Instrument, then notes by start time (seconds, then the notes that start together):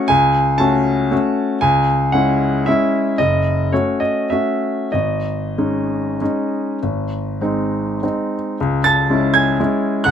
grand piano
0.08 C#2 G#5
0.58 A3 C#4 F#4 A5
1.11 A3 C#4 F#4
1.61 C#2 G#5
2.12 G#3 C#4 E4 F#5
2.66 G#3 C#4 E4 E5
3.18 F#1 D#5
3.72 A3 C#4 F#4 C#5
4.00 D#5
4.30 A3 C#4 F#4 E5
4.92 G#1 D#5
5.58 G#3 C#4 D#4
6.21 G#3 C#4 D#4
6.83 G#1
7.41 G#3 C4 D#4
8.03 G#3 C4 D#4
8.61 C#2
8.84 A5 A6
9.10 G#3 C#4 E4
9.34 G#5 G#6
9.60 G#3 C#4 E4
10.04 C#2 F#5 F#6